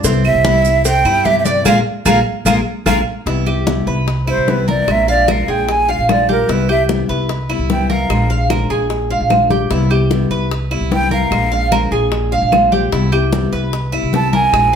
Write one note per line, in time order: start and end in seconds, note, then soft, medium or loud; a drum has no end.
0.04 0.33 C2 loud
0.04 0.24 C3 medium
0.04 0.24 E3 medium
0.04 0.24 G3 medium
0.04 0.24 B3 medium
0.04 0.44 C4 medium
0.04 0.23 E4 medium
0.04 cowbell loud
0.04 high conga soft
0.04 maracas medium
0.24 0.45 G3 soft
0.24 0.44 B3 medium
0.24 0.44 E4 soft
0.24 0.82 E5 loud
0.24 high conga soft
0.24 claves medium
0.24 maracas soft
0.34 1.02 C2 medium
0.45 0.64 C3 medium
0.45 0.65 E3 medium
0.45 0.65 G3 medium
0.45 0.65 B3 medium
0.45 0.84 E4 medium
0.45 0.64 E4 medium
0.45 cowbell medium
0.45 high conga loud
0.45 maracas soft
0.65 0.85 G3 soft
0.65 0.85 B3 medium
0.65 0.84 E4 medium
0.65 high conga soft
0.65 maracas medium
0.85 1.05 C4 medium
0.85 1.27 G5 loud
0.85 muted nylon-string guitar stroke medium
0.85 cowbell loud
0.85 high conga soft
0.85 maracas medium
1.05 1.62 G2 medium
1.05 1.25 G3 soft
1.05 1.25 B3 medium
1.05 1.25 E4 medium
1.05 high conga soft
1.05 claves medium
1.05 maracas soft
1.25 1.65 C3 medium
1.25 1.65 E3 medium
1.25 1.65 G3 medium
1.25 1.65 B3 medium
1.25 1.66 E4 medium
1.25 1.45 G4 medium
1.25 1.38 E5 loud
1.25 cowbell medium
1.25 high conga medium
1.25 maracas soft
1.39 1.46 E5 medium
1.45 1.65 D5 medium
1.45 cowbell medium
1.45 high conga medium
1.45 maracas medium
1.65 1.80 A#1 medium
1.65 1.79 G#3 loud
1.65 1.79 A#3 medium
1.65 1.79 D4 medium
1.65 1.78 F4 medium
1.65 1.78 G#4 medium
1.65 1.78 A#4 medium
1.65 1.79 F5 loud
1.65 cowbell loud
1.65 high conga loud
1.65 claves medium
1.65 maracas medium
2.05 2.21 A#1 medium
2.05 2.19 G#3 medium
2.05 2.19 A#3 loud
2.05 2.19 D4 medium
2.05 2.19 F4 loud
2.05 2.19 G#4 loud
2.05 2.19 A#4 loud
2.05 2.19 F5 medium
2.05 cowbell loud
2.05 high conga loud
2.05 claves loud
2.05 maracas loud
2.45 2.61 A#1 loud
2.45 2.59 G#3 loud
2.45 2.59 A#3 loud
2.45 2.59 D4 loud
2.45 2.59 F4 medium
2.45 2.59 G#4 medium
2.45 2.59 A#4 medium
2.45 2.59 F5 medium
2.45 cowbell loud
2.45 high conga loud
2.45 claves loud
2.45 maracas loud
2.86 3.01 A#1 medium
2.86 3.00 G#3 medium
2.86 3.00 A#3 loud
2.86 3.00 D4 medium
2.86 2.99 F4 medium
2.86 2.99 G#4 loud
2.86 2.99 A#4 medium
2.86 3.00 F5 loud
2.86 cowbell loud
2.86 high conga loud
2.86 claves loud
2.86 maracas loud
3.26 3.84 C2 medium
3.26 3.46 C3 medium
3.26 3.46 E3 medium
3.26 3.46 G3 medium
3.26 3.46 B3 medium
3.26 3.46 E4 medium
3.26 3.45 E4 medium
3.26 high bongo medium
3.26 high conga soft
3.46 3.66 G3 soft
3.46 3.67 B3 soft
3.46 3.66 E4 soft
3.46 3.86 G4 medium
3.46 high bongo soft
3.46 high conga soft
3.46 claves medium
3.67 3.86 C3 medium
3.67 3.87 E3 medium
3.67 3.87 G3 medium
3.67 3.87 B3 medium
3.67 3.86 E4 medium
3.67 high bongo medium
3.67 high conga medium
3.87 4.35 C2 medium
3.87 4.07 G3 soft
3.87 4.07 B3 soft
3.87 4.06 E4 medium
3.87 4.26 B4 medium
3.87 high bongo soft
3.87 high conga soft
4.07 muted nylon-string guitar stroke medium
4.07 high bongo medium
4.07 high conga soft
4.27 4.47 G3 soft
4.27 4.47 B3 medium
4.27 4.47 E4 medium
4.27 4.67 E4 medium
4.27 4.51 C5 medium
4.27 high bongo soft
4.27 high conga soft
4.27 claves medium
4.37 4.85 C2 medium
4.47 4.87 C3 medium
4.47 4.87 E3 medium
4.47 4.87 G3 medium
4.47 4.88 B3 medium
4.47 4.88 E4 medium
4.47 4.69 B4 medium
4.47 high bongo soft
4.47 low bongo medium
4.47 high conga medium
4.68 5.07 A#4 medium
4.68 4.92 D5 medium
4.68 high conga medium
4.88 5.45 A#1 loud
4.88 5.07 F3 medium
4.88 5.07 G#3 medium
4.88 5.07 D4 medium
4.88 5.06 F4 medium
4.88 5.09 E5 loud
4.88 high bongo medium
4.88 high conga soft
4.88 claves medium
5.07 5.27 G#3 soft
5.07 5.28 D4 soft
5.07 5.27 F4 medium
5.07 5.33 D5 medium
5.07 5.28 F5 medium
5.07 high bongo soft
5.07 high conga soft
5.28 5.47 F3 medium
5.28 5.48 G#3 medium
5.28 5.48 D4 medium
5.28 5.46 F4 medium
5.28 5.48 A#4 medium
5.28 5.52 F5 medium
5.28 high bongo medium
5.28 high conga medium
5.28 claves medium
5.48 5.96 A#1 medium
5.48 5.67 G#3 soft
5.48 5.68 D4 soft
5.48 5.67 F4 medium
5.48 5.87 G#4 medium
5.48 5.73 G5 medium
5.48 high bongo soft
5.48 high conga soft
5.68 5.92 G#5 loud
5.68 muted nylon-string guitar stroke medium
5.68 high bongo medium
5.68 high conga soft
5.88 6.08 G#3 soft
5.88 6.08 D4 soft
5.88 6.08 F4 medium
5.88 6.28 F5 medium
5.88 6.13 F5 medium
5.88 high bongo soft
5.88 high conga soft
5.99 6.46 A#1 medium
6.08 6.48 F3 medium
6.08 6.48 G#3 medium
6.08 6.49 D4 medium
6.08 6.49 F4 medium
6.08 6.30 D5 medium
6.08 high bongo soft
6.08 low bongo medium
6.08 high conga medium
6.08 claves medium
6.29 6.48 G4 medium
6.29 6.53 A#4 medium
6.29 high conga medium
6.48 7.06 C2 loud
6.48 6.68 C3 medium
6.48 6.68 E3 medium
6.48 6.68 G3 medium
6.48 6.68 B3 medium
6.48 6.68 E4 medium
6.48 6.67 E4 medium
6.48 6.70 B4 medium
6.48 high bongo medium
6.48 high conga soft
6.69 6.88 G3 soft
6.69 6.89 B3 soft
6.69 6.88 E4 soft
6.69 7.08 G4 medium
6.69 6.82 E5 medium
6.69 high bongo soft
6.69 high conga soft
6.69 claves medium
6.89 7.08 C3 medium
6.89 7.09 E3 medium
6.89 7.09 G3 medium
6.89 7.08 B3 medium
6.89 7.07 E4 medium
6.89 high bongo medium
6.89 high conga medium
7.09 7.57 C2 medium
7.09 7.29 G3 soft
7.09 7.29 B3 medium
7.09 7.28 E4 medium
7.09 7.48 B4 medium
7.09 high bongo soft
7.09 high conga soft
7.29 muted nylon-string guitar stroke medium
7.29 high bongo medium
7.29 high conga soft
7.49 7.70 G3 soft
7.49 7.69 B3 medium
7.49 7.69 E4 medium
7.49 7.89 E4 medium
7.49 high bongo soft
7.49 high conga soft
7.49 claves medium
7.59 8.07 C2 medium
7.70 8.09 C3 medium
7.70 8.09 E3 medium
7.70 8.10 G3 medium
7.70 8.10 B3 medium
7.70 8.10 E4 medium
7.70 7.89 G5 medium
7.70 high bongo soft
7.70 low bongo medium
7.70 high conga medium
7.90 8.29 A#4 medium
7.90 8.47 F5 medium
7.90 high conga medium
8.10 8.67 A#1 medium
8.10 8.29 F3 medium
8.10 8.30 G#3 medium
8.10 8.30 D4 medium
8.10 8.29 F4 medium
8.10 high bongo medium
8.10 claves medium
8.30 8.50 G#3 soft
8.30 8.50 D4 soft
8.30 8.49 F4 soft
8.30 8.49 F5 medium
8.30 high bongo soft
8.30 high conga soft
8.50 8.69 F3 medium
8.50 8.70 G#3 medium
8.50 8.70 D4 medium
8.50 8.69 F4 medium
8.50 8.70 A#4 medium
8.50 high bongo medium
8.50 high conga loud
8.50 claves medium
8.70 9.18 A#1 medium
8.70 8.90 G#3 soft
8.70 8.90 D4 soft
8.70 8.90 F4 medium
8.70 9.09 G#4 medium
8.70 high bongo soft
8.70 high conga soft
8.90 muted nylon-string guitar stroke medium
8.90 high bongo medium
8.90 high conga soft
9.10 9.31 G#3 soft
9.10 9.30 D4 soft
9.10 9.30 F4 medium
9.10 9.49 F5 medium
9.10 high bongo soft
9.10 high conga soft
9.20 9.68 A#1 medium
9.30 9.70 F3 medium
9.30 9.71 G#3 medium
9.30 9.71 D4 medium
9.30 9.71 F4 medium
9.30 high bongo soft
9.30 low bongo medium
9.30 high conga medium
9.30 claves medium
9.50 9.70 G4 medium
9.50 high conga medium
9.71 10.28 C2 loud
9.71 9.90 C3 medium
9.71 9.90 E3 medium
9.71 9.91 G3 medium
9.71 9.91 B3 medium
9.71 9.90 E4 medium
9.71 high bongo medium
9.71 high conga soft
9.90 10.11 G3 soft
9.90 10.11 B3 soft
9.90 10.10 E4 soft
9.90 10.30 G4 medium
9.90 high bongo soft
9.90 high conga soft
9.90 claves medium
10.11 10.30 C3 medium
10.11 10.31 E3 medium
10.11 10.31 G3 medium
10.11 10.31 B3 medium
10.11 10.30 E4 medium
10.11 high bongo medium
10.11 high conga medium
10.30 10.79 C2 medium
10.30 10.51 G3 soft
10.30 10.51 B3 soft
10.30 10.50 E4 medium
10.30 10.70 B4 medium
10.30 high bongo soft
10.30 high conga soft
10.51 muted nylon-string guitar stroke medium
10.51 high bongo medium
10.51 high conga soft
10.71 10.91 G3 soft
10.71 10.91 B3 soft
10.71 10.90 E4 medium
10.71 11.10 E4 medium
10.71 high bongo soft
10.71 high conga soft
10.71 claves medium
10.81 11.29 C2 medium
10.91 11.31 C3 medium
10.91 11.31 E3 medium
10.91 11.31 G3 medium
10.91 11.31 B3 medium
10.91 11.32 E4 medium
10.91 11.11 G5 loud
10.91 high bongo soft
10.91 low bongo medium
10.91 high conga medium
11.11 11.50 A#4 medium
11.11 11.68 F5 medium
11.11 high conga medium
11.31 11.89 A#1 loud
11.31 11.51 F3 medium
11.31 11.51 G#3 medium
11.31 11.51 D4 medium
11.31 11.50 F4 medium
11.31 high bongo medium
11.31 high conga soft
11.31 claves medium
11.51 11.71 G#3 soft
11.51 11.71 D4 soft
11.51 11.71 F4 soft
11.51 11.71 F5 medium
11.51 high bongo soft
11.51 high conga soft
11.72 11.91 F3 medium
11.72 11.91 G#3 medium
11.72 11.91 D4 medium
11.72 11.90 F4 medium
11.72 11.91 A#4 medium
11.72 high bongo medium
11.72 high conga medium
11.72 claves medium
11.91 12.39 A#1 medium
11.91 12.11 G#3 soft
11.91 12.11 D4 soft
11.91 12.11 F4 medium
11.91 12.31 G#4 medium
11.91 high bongo soft
11.91 high conga soft
12.11 muted nylon-string guitar stroke medium
12.11 high bongo medium
12.11 high conga soft
12.31 12.51 G#3 soft
12.31 12.51 D4 medium
12.31 12.51 F4 medium
12.31 12.71 F5 medium
12.31 high bongo soft
12.31 high conga soft
12.42 12.90 A#1 medium
12.52 12.91 F3 medium
12.52 12.91 G#3 medium
12.52 12.92 D4 medium
12.52 12.92 F4 medium
12.52 high bongo soft
12.52 low bongo medium
12.52 high conga medium
12.52 claves medium
12.72 12.92 G4 medium
12.72 high conga medium
12.92 13.50 C2 medium
12.92 13.11 C3 medium
12.92 13.12 E3 medium
12.92 13.12 G3 medium
12.92 13.12 B3 medium
12.92 13.12 E4 medium
12.92 13.11 E4 medium
12.92 high bongo medium
13.12 13.32 G3 soft
13.12 13.32 B3 soft
13.12 13.31 E4 medium
13.12 13.51 G4 medium
13.12 high bongo soft
13.12 high conga soft
13.12 claves medium
13.32 13.52 C3 medium
13.32 13.52 E3 medium
13.32 13.52 G3 medium
13.32 13.52 B3 medium
13.32 13.51 E4 medium
13.32 high bongo medium
13.32 high conga loud
13.52 14.00 C2 medium
13.52 13.72 G3 soft
13.52 13.72 B3 soft
13.52 13.72 E4 soft
13.52 13.92 B4 medium
13.52 high bongo soft
13.73 muted nylon-string guitar stroke medium
13.73 high bongo medium
13.73 high conga soft
13.92 14.12 G3 soft
13.92 14.12 B3 medium
13.92 14.32 E4 medium
13.92 14.12 E4 medium
13.92 high bongo soft
13.92 high conga soft
13.92 claves medium
14.03 14.50 C2 medium
14.12 14.52 C3 medium
14.12 14.52 E3 medium
14.12 14.52 G3 medium
14.12 14.53 B3 medium
14.12 14.53 E4 medium
14.12 14.33 A5 loud
14.12 high bongo soft
14.12 low bongo medium
14.12 high conga medium
14.33 14.72 A#4 medium
14.33 14.76 G#5 loud
14.33 high conga medium
14.52 14.76 A#1 medium
14.52 14.72 F3 medium
14.52 14.72 G#3 medium
14.52 14.73 D4 medium
14.52 14.72 F4 medium
14.52 high bongo medium
14.52 high conga soft
14.52 claves medium